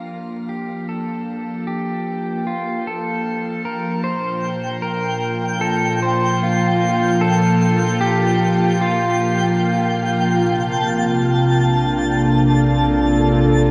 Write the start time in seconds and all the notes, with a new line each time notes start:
Already playing: F3 A#3 D4 F4
0.49 G4
0.89 A4
1.67 G4
2.47 F4
2.87 A4
3.65 A#4
4.04 A#3 F4 C5 G5
4.08 A#2
4.39 F3
4.82 A#4
5.61 A4
6.02 C5
6.43 F4
7.21 A4
8.01 G4
8.81 F4
10.36 A#1 C3 A#3 F4 A5
10.93 A#3
11.24 D4
11.71 A4